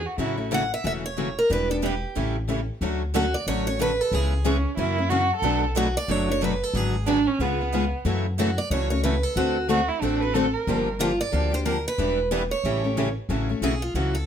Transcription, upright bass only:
0.18 0.71 A1 medium
0.84 1.37 E1 medium
1.50 2.02 E1 medium
2.16 2.68 A1 medium
2.81 3.33 D2 medium
3.47 3.99 A1 medium
4.12 4.64 C#2 medium
4.77 5.30 F#2 medium
5.42 5.95 B1 medium
6.08 6.61 F#1 medium
6.74 7.26 G#1 medium
7.39 7.92 C#2 medium
8.05 8.57 F#2 medium
8.70 9.23 C#2 medium
9.36 9.88 D2 medium
10.02 10.54 A1 medium
10.67 11.20 G1 medium
11.33 11.85 D2 medium
11.98 12.51 E1 medium
12.64 13.16 A1 medium
13.29 13.55 A1 medium
13.62 13.90 B1 medium
13.94 14.22 C#2 medium

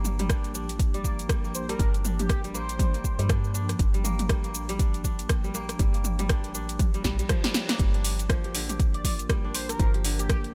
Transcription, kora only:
0.00 0.18 G3 medium
0.00 1.04 A#3 medium
0.00 0.23 D4 medium
0.19 0.93 G3 loud
0.30 0.54 D4 medium
0.54 1.79 D4 medium
0.94 1.28 G3 medium
1.04 1.44 A#3 loud
1.29 1.68 G3 medium
1.44 2.54 A#3 medium
1.69 2.43 G3 loud
1.79 2.04 D4 medium
2.04 3.29 D4 medium
2.44 2.78 G3 medium
2.54 2.94 A#3 loud
2.79 3.18 G3 medium
2.94 4.04 A#3 medium
3.19 3.93 G3 loud
3.29 3.54 D4 medium
3.54 4.79 D4 medium
3.94 4.28 G3 medium
4.04 4.44 A#3 loud
4.29 4.68 G3 medium
4.44 5.54 A#3 medium
4.69 5.43 G3 loud
4.79 5.04 D4 medium
5.04 6.29 D4 medium
5.44 5.78 G3 medium
5.54 5.94 A#3 loud
5.79 6.18 G3 medium
5.94 7.69 A#3 medium
6.19 6.93 G3 loud
6.29 6.54 D4 medium
6.54 7.94 D4 medium
6.94 7.03 G3 medium
7.05 7.18 G3 loud
7.19 7.43 G3 medium
7.29 7.84 F3 loud
7.44 7.78 G3 loud
7.69 9.62 A#3 medium
7.79 8.60 G3 medium
7.94 9.44 D4 medium
8.29 8.59 F3 medium
8.44 8.69 G4 medium
8.55 10.03 D3 medium
8.69 9.94 G4 medium
9.04 10.54 F4 medium
9.29 10.10 G3 medium
9.44 10.54 D4 medium
9.80 10.10 F3 medium
9.94 10.19 G4 medium
10.04 10.54 D3 medium
10.19 10.54 G4 medium

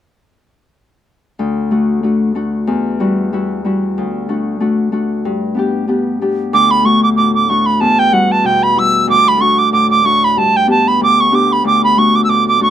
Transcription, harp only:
1.39 2.73 D2 medium
1.71 2.03 A3 soft
1.71 2.03 D4 soft
1.71 2.04 F#4 soft
2.03 2.34 A3 soft
2.03 2.35 D4 soft
2.03 2.36 F#4 soft
2.35 4.28 A3 soft
2.35 4.29 D4 soft
2.35 3.00 F#4 soft
2.67 4.02 E2 medium
3.00 3.32 G3 soft
3.00 3.33 E4 soft
3.00 3.33 F#4 medium
3.33 3.63 G3 soft
3.33 3.65 E4 soft
3.33 3.65 F#4 soft
3.65 4.02 G3 soft
3.65 6.26 E4 soft
3.65 4.29 F#4 soft
3.98 5.30 D2 soft
4.29 4.60 A3 soft
4.29 4.60 D4 soft
4.29 4.61 F#4 soft
4.60 4.92 A3 soft
4.60 4.92 D4 soft
4.60 4.93 F#4 soft
4.92 6.84 A3 soft
4.92 5.56 D4 soft
4.92 5.31 F#4 soft
5.25 6.58 G2 medium
5.55 5.87 B3 soft
5.55 5.88 D4 soft
5.59 5.88 G4 medium
5.88 6.21 B3 soft
5.88 6.21 D4 soft
5.88 6.22 G4 soft
6.21 9.32 B3 soft
6.21 6.85 D4 soft
6.21 6.91 G4 soft
6.53 7.85 D2 medium
6.84 7.48 A3 soft
6.84 7.49 D4 soft
6.84 7.50 F#4 soft
7.18 7.85 A2 medium
7.49 9.37 A3 soft
7.49 9.39 D4 soft
7.49 8.13 F#4 soft
7.81 9.13 E2 medium
8.12 8.75 G3 soft
8.12 8.76 E4 soft
8.12 8.77 F#4 medium
8.44 9.13 B2 medium
8.76 9.13 G3 soft
8.76 11.37 E4 soft
8.76 9.41 F#4 soft
9.07 10.41 D2 medium
9.37 10.04 A3 soft
9.37 10.04 D4 soft
9.42 10.05 F#4 medium
9.73 10.41 A2 medium
10.04 11.96 A3 soft
10.04 10.67 D4 soft
10.04 10.43 F#4 soft
10.37 11.05 G2 medium
10.67 11.31 B3 soft
10.67 11.31 D4 soft
10.67 11.32 G4 medium
11.01 11.63 D2 medium
11.32 12.70 B3 soft
11.32 11.97 D4 soft
11.32 12.04 G4 soft
11.64 12.70 D2 medium
11.97 12.60 A3 soft
11.97 12.60 D4 soft
11.97 12.61 F#4 soft
12.29 12.70 A2 soft
12.60 12.70 A3 soft
12.60 12.70 D4 soft
12.60 12.70 F#4 soft

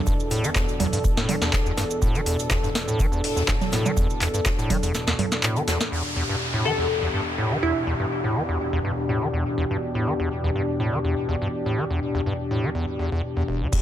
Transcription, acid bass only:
0.07 0.14 G2 medium
0.31 0.45 A2 medium
0.44 0.50 E3 loud
0.55 0.66 E2 medium
0.80 0.87 E2 loud
0.93 0.99 G2 medium
1.17 1.30 A2 medium
1.29 1.36 E3 loud
1.42 1.51 E2 medium
1.66 1.72 E2 loud
1.77 1.85 G2 medium
2.02 2.16 A2 medium
2.15 2.21 E3 loud
2.26 2.37 E2 medium
2.51 2.58 E2 loud
2.63 2.70 G2 medium
2.88 3.01 A2 medium
2.99 3.06 E3 loud
3.12 3.22 E2 medium
3.36 3.43 E2 loud
3.48 3.55 G2 medium
3.72 3.87 A2 medium
3.85 3.92 E3 loud
3.97 4.08 E2 medium
4.21 4.28 E2 loud
4.34 4.41 G2 medium
4.59 4.71 A2 medium
4.70 4.77 E3 loud
4.83 4.92 E2 medium
5.07 5.14 E2 loud
5.19 5.26 G2 medium
5.43 5.58 A2 medium
5.56 5.62 E3 loud
5.68 5.78 E2 medium
5.92 6.03 E2 medium
6.16 6.24 E2 loud
6.29 6.36 G2 medium
6.54 6.67 A2 medium
6.65 6.72 E3 loud
6.78 6.88 E2 medium
7.03 7.09 E2 loud
7.14 7.21 G2 medium
7.38 7.53 A2 medium
7.51 7.58 E3 loud
7.63 7.73 E2 medium
7.87 7.94 E2 loud
8.00 8.06 G2 medium
8.24 8.37 A2 medium
8.36 8.43 E3 loud
8.49 8.58 E2 medium
8.73 8.80 E2 loud
8.85 8.92 G2 medium
9.09 9.23 A2 medium
9.22 9.28 E3 loud
9.34 9.44 E2 medium
9.58 9.65 E2 loud
9.71 9.77 G2 medium
9.95 10.08 A2 medium
10.07 10.14 E3 loud
10.20 10.29 E2 medium
10.44 10.50 E2 loud
10.55 10.63 G2 medium
10.80 10.94 A2 medium
10.93 10.99 E3 loud
11.04 11.15 E2 medium
11.29 11.36 E2 loud
11.42 11.48 G2 medium
11.66 11.79 A2 medium
11.78 11.85 E3 loud
11.90 12.00 E2 medium
12.15 12.21 E2 loud
12.26 12.33 G2 medium
12.51 12.65 A2 medium
12.64 12.70 E3 loud
12.75 12.86 E2 medium
12.99 13.10 E2 medium
13.12 13.22 E2 loud
13.37 13.43 E2 loud
13.48 13.63 E1 medium
13.61 13.68 E2 medium
13.73 13.82 E2 medium

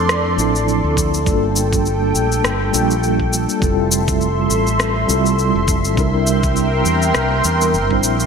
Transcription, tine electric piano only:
0.00 0.35 F3 medium
0.00 0.35 C4 medium
0.00 0.36 D4 medium
0.00 0.36 E4 medium
0.00 0.37 A4 medium
0.36 1.23 F3 medium
0.36 1.23 C4 medium
0.36 1.24 D4 medium
0.36 1.25 E4 medium
0.41 1.25 A4 medium
1.24 2.70 G3 medium
1.24 2.70 A#3 medium
1.24 2.71 D4 medium
1.24 2.71 F4 medium
1.29 2.72 A4 medium
2.72 3.58 G3 medium
2.72 3.59 A#3 medium
2.72 3.59 D4 medium
2.72 3.60 F4 medium
2.76 3.60 A4 medium
3.60 5.05 G3 medium
3.60 5.06 C4 medium
3.60 5.06 E4 medium
3.60 5.07 F4 medium
3.64 5.07 A4 medium
5.07 5.93 G3 medium
5.07 5.94 C4 medium
5.07 5.94 E4 medium
5.07 5.95 F4 medium
5.12 5.96 A4 medium
5.95 7.40 G3 medium
5.95 7.41 C4 medium
5.95 7.41 D4 medium
5.95 7.42 E4 medium
6.00 7.43 A#4 medium
7.90 8.05 G3 medium
7.90 8.05 C4 medium
7.90 8.06 D4 medium
7.90 8.06 E4 medium
7.90 8.06 C5 medium

